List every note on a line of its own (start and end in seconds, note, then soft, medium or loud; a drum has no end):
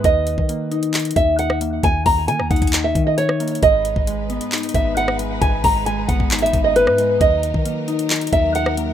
0.04 0.37 D#2 loud
0.04 1.15 D#3 medium
0.04 1.12 D#5 loud
0.04 kick loud
0.04 closed hi-hat medium
0.27 closed hi-hat medium
0.38 1.13 D#3 loud
0.38 kick medium
0.49 1.60 A#3 medium
0.49 closed hi-hat medium
0.71 1.83 D#4 loud
0.71 closed hi-hat soft
0.83 closed hi-hat medium
0.94 2.06 D#5 medium
0.94 clap loud
0.94 closed hi-hat soft
0.99 closed hi-hat medium
1.05 closed hi-hat medium
1.11 closed hi-hat medium
1.16 1.81 D#2 loud
1.16 1.82 D#3 medium
1.16 1.36 E5 medium
1.16 kick medium
1.16 closed hi-hat medium
1.39 1.59 F#5 medium
1.39 closed hi-hat medium
1.50 cross-stick loud
1.61 2.27 A#3 medium
1.61 closed hi-hat medium
1.83 2.05 D#2 loud
1.83 2.94 D#3 loud
1.83 2.03 G#5 loud
1.83 kick loud
1.83 closed hi-hat medium
2.06 2.30 D#2 loud
2.06 2.26 A#5 medium
2.06 kick medium
2.06 open hi-hat medium
2.28 2.41 D#3 loud
2.28 3.39 A#3 medium
2.28 2.48 G#5 medium
2.28 closed hi-hat medium
2.39 2.50 D#2 loud
2.39 cross-stick medium
2.51 2.61 D#2 loud
2.51 3.62 D#4 loud
2.51 2.82 F#5 medium
2.51 kick loud
2.51 closed hi-hat soft
2.56 closed hi-hat medium
2.62 2.94 D#2 loud
2.62 kick loud
2.62 closed hi-hat medium
2.67 closed hi-hat medium
2.73 3.63 D#5 medium
2.73 clap loud
2.73 closed hi-hat medium
2.84 3.04 E5 medium
2.95 3.60 D#3 loud
2.95 3.63 D#3 medium
2.95 kick medium
2.95 closed hi-hat medium
3.07 3.16 D#5 medium
3.18 3.60 C#5 medium
3.18 closed hi-hat medium
3.29 cross-stick loud
3.40 3.62 A#3 medium
3.40 closed hi-hat medium
3.48 closed hi-hat medium
3.55 closed hi-hat medium
3.62 3.95 G#1 loud
3.62 4.73 G#2 medium
3.62 7.17 G#3 medium
3.62 8.93 D#4 medium
3.62 7.17 B4 medium
3.62 4.71 D#5 loud
3.62 kick loud
3.62 closed hi-hat medium
3.85 closed hi-hat medium
3.96 4.39 G#1 loud
3.96 kick medium
4.07 5.18 G#3 medium
4.07 closed hi-hat medium
4.30 5.42 B3 loud
4.30 closed hi-hat soft
4.41 closed hi-hat medium
4.52 5.64 D#4 medium
4.52 clap loud
4.52 closed hi-hat soft
4.58 closed hi-hat medium
4.63 closed hi-hat medium
4.69 closed hi-hat medium
4.74 5.39 G#1 loud
4.74 5.41 G#2 medium
4.74 4.94 E5 medium
4.74 kick loud
4.74 closed hi-hat medium
4.97 5.17 F#5 medium
4.97 closed hi-hat medium
5.08 cross-stick loud
5.19 5.85 G#3 medium
5.19 closed hi-hat medium
5.41 5.63 G#1 loud
5.41 6.52 G#2 medium
5.41 5.61 G#5 loud
5.41 kick loud
5.41 closed hi-hat medium
5.64 6.07 G#1 loud
5.64 5.84 A#5 medium
5.64 kick medium
5.64 open hi-hat medium
5.86 6.97 G#3 medium
5.86 6.06 G#5 medium
5.86 closed hi-hat medium
6.08 6.20 G#1 loud
6.08 7.21 B3 medium
6.08 6.40 F#5 medium
6.08 kick loud
6.08 closed hi-hat medium
6.20 6.52 G#1 loud
6.20 kick medium
6.31 7.21 D#4 medium
6.31 clap loud
6.31 closed hi-hat soft
6.39 6.62 E5 medium
6.39 closed hi-hat medium
6.46 closed hi-hat medium
6.53 6.89 G#1 loud
6.53 7.21 G#2 medium
6.53 kick medium
6.53 closed hi-hat medium
6.64 6.74 D#5 medium
6.76 7.18 B4 loud
6.76 closed hi-hat medium
6.87 7.19 G#2 loud
6.87 cross-stick loud
6.98 7.21 G#3 medium
6.98 closed hi-hat medium
7.21 7.53 D#2 loud
7.21 8.31 D#3 medium
7.21 8.93 F#3 medium
7.21 8.93 A#4 medium
7.21 8.29 D#5 loud
7.21 kick loud
7.21 closed hi-hat medium
7.43 closed hi-hat medium
7.54 8.30 D#3 loud
7.54 kick medium
7.65 8.76 A#3 medium
7.65 closed hi-hat medium
7.88 8.93 D#4 loud
7.88 closed hi-hat soft
7.99 closed hi-hat medium
8.10 8.93 D#5 medium
8.10 clap loud
8.10 closed hi-hat soft
8.16 closed hi-hat medium
8.21 closed hi-hat medium
8.27 closed hi-hat medium
8.32 8.93 D#2 loud
8.32 8.93 D#3 medium
8.32 8.52 E5 medium
8.32 kick loud
8.32 closed hi-hat medium
8.55 8.75 F#5 medium
8.55 closed hi-hat medium
8.66 cross-stick loud
8.77 8.93 A#3 medium
8.77 closed hi-hat medium